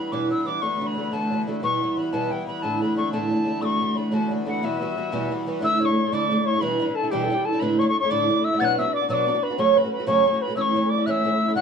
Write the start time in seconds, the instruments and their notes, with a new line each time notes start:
Already playing: twelve-string acoustic guitar E3 G3 D4, accordion E3 B3, tin whistle B5
0.00 twelve-string acoustic guitar E4
0.12 twelve-string acoustic guitar E2 B2 E3 G3 D4 E4, tin whistle D6
0.29 twelve-string acoustic guitar E3 G3 D4 E4, tin whistle E6
0.45 twelve-string acoustic guitar E3 G3 D4 E4, tin whistle D6
0.61 twelve-string acoustic guitar D3 A3 D4 F#4, tin whistle C#6
0.79 twelve-string acoustic guitar D3 A3 D4 F#4, tin whistle C#6
0.86 tin whistle B5
0.96 twelve-string acoustic guitar D3 A3 D4 F#4
1.12 twelve-string acoustic guitar D3 A3 D4 F#4, tin whistle A5
1.31 twelve-string acoustic guitar D3 A3 D4 F#4
1.47 twelve-string acoustic guitar D3 A3 D4 F#4
1.62 twelve-string acoustic guitar E2 B2 E3 G3 B3 E4, accordion E3 B3, tin whistle C#6
1.81 twelve-string acoustic guitar E3 G3 B3 E4
1.97 twelve-string acoustic guitar E3 G3 B3 E4, tin whistle B5
2.12 twelve-string acoustic guitar E2 B2 E3 G3 B3 E4, tin whistle A5
2.31 twelve-string acoustic guitar E3 G3 B3 E4, tin whistle G5
2.47 twelve-string acoustic guitar E3 G3 B3 E4, tin whistle B5
2.62 twelve-string acoustic guitar A2 D3 A3 D4 E4, tin whistle A5
2.81 twelve-string acoustic guitar D3 A3 D4 E4, tin whistle B5
2.96 twelve-string acoustic guitar D3 A3 D4 E4, tin whistle C#6
3.12 twelve-string acoustic guitar A2 D3 A3 D4 E4, tin whistle A5
3.30 twelve-string acoustic guitar D3 A3 D4 E4
3.45 twelve-string acoustic guitar D3 A3 D4 E4
3.61 twelve-string acoustic guitar D3 A3 D4 F#4, tin whistle C#6 E6
3.80 twelve-string acoustic guitar D3 A3 D4 F#4
3.95 twelve-string acoustic guitar D3 A3 D4 F#4, tin whistle B5
4.11 twelve-string acoustic guitar D3 A3 D4 F#4, tin whistle A5
4.29 twelve-string acoustic guitar D3 A3 D4 F#4
4.45 twelve-string acoustic guitar D3 A3 D4 F#4, tin whistle F#5
4.62 twelve-string acoustic guitar E2 B2 E3 G3 B3 F#4, tin whistle E5
4.80 twelve-string acoustic guitar E3 G3 B3 F#4
4.95 twelve-string acoustic guitar E3 G3 B3 F#4
5.12 twelve-string acoustic guitar E2 B2 E3 G3 B3 F#4
5.29 twelve-string acoustic guitar E3 G3 B3 F#4
5.46 twelve-string acoustic guitar E3 G3 B3 F#4
5.61 twelve-string acoustic guitar D3 A3 D4 E4, flute E5, tin whistle E6
5.80 twelve-string acoustic guitar D3 A3 D4 E4, flute C#5, tin whistle E6
5.85 twelve-string acoustic guitar E4, tin whistle C#6
5.90 twelve-string acoustic guitar A3 D4
6.04 twelve-string acoustic guitar A3 D4 E4
6.12 twelve-string acoustic guitar D3 A3 D4 E4, flute D5, tin whistle D6
6.30 twelve-string acoustic guitar D3 A3 D4 E4
6.38 twelve-string acoustic guitar A3 D4 E4
6.45 flute C#5, tin whistle C#6
6.54 twelve-string acoustic guitar A3 D4 E4
6.61 twelve-string acoustic guitar E2 B2 E3 G3 D4 E4, flute B4, tin whistle B5
6.79 twelve-string acoustic guitar E3 G3 D4 E4
6.87 twelve-string acoustic guitar E3 G3 D4 E4
6.95 flute A4, tin whistle A5
7.03 twelve-string acoustic guitar E3 G3 D4 E4
7.10 twelve-string acoustic guitar E2 B2 E3 G3 D4 E4, flute G4, tin whistle G5
7.24 flute A4
7.30 twelve-string acoustic guitar E3 G3 D4 E4
7.35 twelve-string acoustic guitar G3 D4 E4, flute G4
7.39 twelve-string acoustic guitar E3
7.45 flute A4, tin whistle A5
7.53 twelve-string acoustic guitar E3 G3 D4 E4
7.59 twelve-string acoustic guitar A2 D3 A3 D4 E4, flute B4, tin whistle B5
7.79 twelve-string acoustic guitar D3 A3 D4 E4, flute C#5, tin whistle C#6
7.87 twelve-string acoustic guitar A3 D4 E4, tin whistle C#6
7.99 twelve-string acoustic guitar E4, flute C#5, tin whistle C#6
8.04 twelve-string acoustic guitar A3 D4
8.10 twelve-string acoustic guitar A2 D3 A3 D4 E4, flute D5, tin whistle D6
8.28 twelve-string acoustic guitar D3 A3 D4 E4
8.36 twelve-string acoustic guitar A3 D4 E4
8.44 flute E5, tin whistle E6
8.52 twelve-string acoustic guitar A3 D4 E4
8.58 twelve-string acoustic guitar B2 F#3 B3 D4, flute F#5, tin whistle A6
8.62 twelve-string acoustic guitar F#4, tin whistle F#6
8.78 twelve-string acoustic guitar F#3 B3 D4 F#4, flute E5, tin whistle E6
8.85 twelve-string acoustic guitar B3 D4 F#4
8.93 flute D5, tin whistle D6
9.01 twelve-string acoustic guitar B3 D4 F#4
9.09 twelve-string acoustic guitar B2 F#3 B3 D4 F#4, flute D5, tin whistle E6
9.13 tin whistle D6
9.27 twelve-string acoustic guitar F#3 B3 D4 F#4
9.34 twelve-string acoustic guitar B3 D4 F#4
9.43 flute B4, tin whistle B5
9.50 twelve-string acoustic guitar B3 D4 F#4
9.58 twelve-string acoustic guitar F#2 C#3 F#3 A3 C#4 F#4, flute C#5, tin whistle C#6
9.75 twelve-string acoustic guitar F#3 A3 C#4 F#4, flute B4, tin whistle B5
9.84 twelve-string acoustic guitar F#3 A3 C#4 F#4
9.92 flute B4, tin whistle B5
10.00 twelve-string acoustic guitar F#3 A3 C#4 F#4
10.06 twelve-string acoustic guitar F#2 C#3 F#3 A3 C#4 F#4, flute C#5, tin whistle C#6
10.24 twelve-string acoustic guitar F#3 A3 C#4 F#4, flute C#5
10.33 twelve-string acoustic guitar F#3 A3 C#4 F#4
10.41 flute B4, tin whistle B5
10.47 twelve-string acoustic guitar F#3 A3 C#4 F#4
10.56 twelve-string acoustic guitar E3 A3 C#4 E4, flute C#5, tin whistle E6
10.61 tin whistle C#6
10.74 twelve-string acoustic guitar E3 A3 C#4 E4
10.82 twelve-string acoustic guitar A3 C#4 E4
10.89 flute D5, tin whistle D6
10.98 twelve-string acoustic guitar A3 C#4 E4
11.06 twelve-string acoustic guitar E3 A3 C#4 E4, flute E5, tin whistle F#6
11.10 tin whistle E6
11.24 twelve-string acoustic guitar E3 A3 C#4 E4
11.31 twelve-string acoustic guitar A3 C#4 E4
11.48 twelve-string acoustic guitar A3 C#4 E4
11.55 twelve-string acoustic guitar D3 A3 D4 F#4, flute F#5, tin whistle F#6